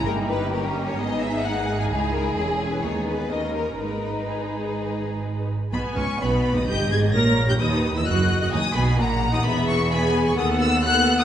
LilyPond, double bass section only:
\new Staff \with { instrumentName = "Double bass section" } { \clef bass \time 4/4 \key gis \minor \tempo 4 = 129 g,,2 gis,,2 | cis,4 e,,4 dis,4 dis,4 | gis,,2.~ gis,,8 r8 | b,,8 cis,8 b,,8. r16 g,,8 gis,,8 ais,,8. r16 |
dis,8. r16 fis,,8. r16 dis,8 b,,8 ais,,8. r16 | e,,2 dis,2 | }